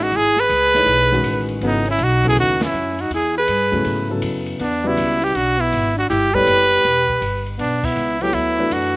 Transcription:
Already playing: A1
0.01 D#4 F#4
0.12 G#1 E4, ride
0.16 G#4
0.36 G#4 B4, snare
0.49 C#2, hi-hat pedal, ride
0.74 E3 A3 D#4 G#4 C#5, snare, ride
0.86 B1, ride
0.99 snare
1.12 D#3 G#3 C#4 F#4 B4, snare
1.23 A1, hi-hat pedal, ride
1.49 ride
1.61 G#1 C#3 F#3 B3 E4 A4, ride
1.66 D#4
1.86 C#4, ride
1.91 E4
1.98 B1, hi-hat pedal, ride
2.02 D#4 F#4
2.23 C#3 F#3 B3 E4 A4, kick, ride
2.28 G#4
2.36 D#2, ride
2.40 D#4 F#4
2.61 C#4 E4, snare, ride
2.73 F#2, hi-hat pedal
2.99 D#4 F#4, ride
3.10 E2 E4, ride
3.14 G#4
3.38 G#4 B4
3.48 G2, hi-hat pedal, ride
3.72 C#3 F#3 A3 B3 E4, kick, ride
3.85 G#2, ride
4.10 C#3 F#3 B3 E4 A4
4.22 F#2, hi-hat pedal, ride
4.46 ride
4.59 E2 B3 D4, ride
4.84 C#3 G3 B3 E4 F#4 B4 D5
4.97 C#2, hi-hat pedal, ride
5.22 E4 G4, ride
5.35 B1 D4 F#4, ride
5.58 B3 E4
5.72 G#1, hi-hat pedal, ride
5.96 D4 F#4
6.10 G1 E4 G4, snare, ride
6.32 G3 B3 E4 G4 A4 B4 C#5, kick
6.47 F#1, hi-hat pedal, ride
6.71 ride
6.84 E1, snare, ride
7.09 kick
7.21 G1, hi-hat pedal, ride
7.46 ride
7.58 B1 B3 D4, ride
7.82 B3 E4, kick, crash
7.96 C#2, hi-hat pedal
8.20 F#3 B3 E4 G4 A4 C#5, ride
8.32 D2 B3 E4, ride
8.58 E3 A3 D4 F#4 B4
8.70 F#2 D4 F#4, hi-hat pedal, ride

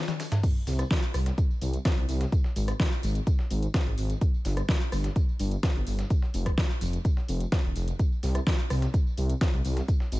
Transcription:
0.08 snare, high tom, tambourine, shaker
0.20 snare, open hi-hat, tambourine, shaker
0.32 snare, closed hi-hat, mid tom, tambourine, shaker
0.43 kick, closed hi-hat, crash, tambourine, shaker
0.56 tambourine
0.67 C2, snare, open hi-hat, tambourine, shaker
0.79 cross-stick, closed hi-hat, tambourine
0.91 kick, snare, closed hi-hat, tambourine, shaker
1.03 closed hi-hat, tambourine
1.14 C2, cross-stick, open hi-hat, tambourine, shaker
1.26 snare, closed hi-hat, tambourine
1.38 kick, closed hi-hat, tambourine, shaker
1.51 tambourine
1.61 C2, open hi-hat, tambourine, shaker
1.73 closed hi-hat, tambourine
1.85 kick, snare, closed hi-hat, tambourine, shaker
1.97 C2, tambourine
2.09 C2, open hi-hat, tambourine, shaker
2.21 snare, closed hi-hat, tambourine
2.32 kick, closed hi-hat, tambourine, shaker
2.44 snare, tambourine
2.56 G#1, open hi-hat, tambourine, shaker
2.68 cross-stick, closed hi-hat, tambourine
2.80 kick, snare, closed hi-hat, tambourine, shaker
2.92 tambourine
3.03 G#1, open hi-hat, tambourine, shaker
3.15 closed hi-hat, tambourine
3.27 kick, closed hi-hat, tambourine, shaker
3.39 snare, tambourine
3.51 G#1, open hi-hat, tambourine, shaker
3.63 closed hi-hat, tambourine
3.74 kick, snare, closed hi-hat, tambourine, shaker
3.86 G#1, tambourine
3.98 G#1, open hi-hat, tambourine, shaker
4.10 closed hi-hat, tambourine
4.21 kick, closed hi-hat, tambourine, shaker
4.34 tambourine
4.45 G1, snare, open hi-hat, tambourine, shaker
4.57 cross-stick, closed hi-hat, tambourine
4.69 kick, snare, closed hi-hat, tambourine, shaker
4.81 closed hi-hat, tambourine
4.92 G1, cross-stick, open hi-hat, tambourine, shaker
5.04 snare, closed hi-hat, tambourine
5.16 kick, closed hi-hat, tambourine, shaker
5.29 tambourine
5.39 G1, open hi-hat, tambourine, shaker
5.51 closed hi-hat, tambourine
5.63 kick, snare, closed hi-hat, tambourine, shaker
5.75 G1, tambourine
5.87 G1, open hi-hat, tambourine, shaker
5.99 snare, closed hi-hat, tambourine
6.10 kick, closed hi-hat, tambourine, shaker
6.22 snare, tambourine
6.34 F1, open hi-hat, tambourine, shaker
6.46 kick, cross-stick, closed hi-hat, tambourine
6.58 kick, snare, closed hi-hat, tambourine, shaker
6.70 tambourine
6.81 F1, open hi-hat, tambourine, shaker
6.93 closed hi-hat, tambourine
7.05 kick, closed hi-hat, tambourine, shaker
7.17 snare, tambourine
7.28 F1, open hi-hat, tambourine, shaker
7.40 closed hi-hat, tambourine
7.52 kick, snare, closed hi-hat, tambourine, shaker
7.64 D#1, tambourine
7.76 F1, open hi-hat, tambourine, shaker
7.88 closed hi-hat, tambourine
7.99 kick, closed hi-hat, tambourine, shaker
8.12 tambourine
8.23 C2, snare, open hi-hat, tambourine, shaker
8.35 cross-stick, closed hi-hat, tambourine
8.47 kick, snare, closed hi-hat, tambourine, shaker
8.59 closed hi-hat, tambourine
8.70 C2, cross-stick, open hi-hat, tambourine, shaker
8.82 snare, closed hi-hat, tambourine
8.94 kick, closed hi-hat, tambourine, shaker
9.07 tambourine
9.17 C2, open hi-hat, tambourine, shaker
9.30 closed hi-hat, tambourine
9.41 kick, snare, closed hi-hat, tambourine, shaker
9.53 C2, tambourine
9.65 C2, open hi-hat, tambourine, shaker
9.77 snare, closed hi-hat, tambourine
9.88 kick, closed hi-hat, tambourine, shaker
10.00 snare, tambourine
10.12 G#1, open hi-hat, tambourine, shaker

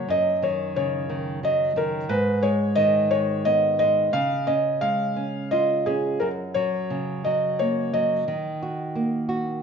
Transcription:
Already playing: C#5
0.08 F#2 D#5
0.42 D#3 C#5
0.76 C#3 C#5
1.10 D#3
1.43 F#3 D#5
1.76 D#3 A#4
2.09 G#2 B4
2.43 G#3 C#5
2.75 D#3 D#5
3.11 G#3 C#5
3.45 B3 D#5
3.79 G#3 D#5
4.13 C#3 F5
4.47 C#4 D#5
4.81 G#3 F5
5.16 C#4
5.51 F4 D#5
5.86 C#4 G#4
6.20 F#2 A#4
6.54 F#3 C#5
6.90 C#3
7.24 F#3 D#5
7.59 A#3 C#5
7.93 F#3 D#5
8.28 D#3
8.62 F#4
8.95 A#3
9.29 F#4

